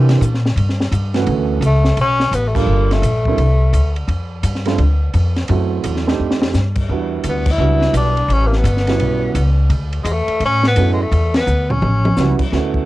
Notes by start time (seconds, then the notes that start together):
Already playing: C3 E3 A#3 C4 D4 G4
0.09 snare, ride
0.21 A#2, hi-hat pedal
0.34 snare
0.46 snare
0.56 G2, ride
0.69 snare
0.80 snare
0.91 G2, hi-hat pedal, ride
1.14 D2 E3 A3 B3 C#4 F#4, snare, ride
1.27 D2, ride
1.61 C#2, hi-hat pedal, ride
1.66 A3
1.85 snare
1.97 B1 C#4, ride
2.20 snare
2.32 A1 B3, hi-hat pedal, ride
2.48 A3
2.55 G3 A#3 D4 F4 A4, kick, crash
2.67 G1
2.91 A3, snare, ride
3.02 A#1, hi-hat pedal, ride
3.25 G3 A#3 C4 D4 E4, kick
3.37 C2, ride
3.73 D2, hi-hat pedal, ride
3.96 ride
4.08 F2, ride
4.43 G2, hi-hat pedal, ride
4.55 snare
4.65 G3 A3 C4 D4 F4, snare, ride
4.78 D2, ride
5.14 F2, hi-hat pedal, ride
5.36 snare, ride
5.48 F#2 F#3 A3 C4 E4 F#4, ride
5.84 E2, hi-hat pedal, ride
5.96 snare
6.07 A3 C4 D4 D#4 G4, snare
6.19 F2
6.31 snare
6.42 snare
6.53 G2, snare, hi-hat pedal
6.75 kick, crash
6.89 E2 G3 B3 D4 E4 F#4
7.24 D2, hi-hat pedal, ride
7.29 B3
7.46 kick, crash
7.52 E4
7.58 C#2 G3 B3 D4 E4 F#4
7.81 snare
7.93 B1 D4, hi-hat pedal, ride
8.17 ride
8.28 A1, ride
8.33 C#4
8.47 A#3
8.53 B3, snare
8.64 G1, hi-hat pedal, ride
8.77 snare
8.87 G3 B3 C#4 E4 F#4, snare, ride
9.00 B1, ride
9.35 C#2, hi-hat pedal, ride
9.70 D2, ride
9.93 ride
10.03 E2 G#3, hi-hat pedal, ride
10.12 A3
10.28 muted upright bass stroke, ride
10.40 A2, ride
10.45 C#4
10.64 B3, snare
10.76 F#2 A3 B3 C#4 E4 F#4, hi-hat pedal, ride
10.93 G#3
11.02 A3
11.11 E2, ride
11.34 B3, snare, ride
11.47 D2, hi-hat pedal
11.70 C#4, floor tom
11.82 A1, mid tom
12.05 mid tom
12.17 C#2 G3 B3 C#4 E4 F#4, snare, hi-hat pedal
12.39 muted upright bass stroke, kick, crash
12.52 D2 A3 B3 C#4 E4 F#4, snare
12.74 kick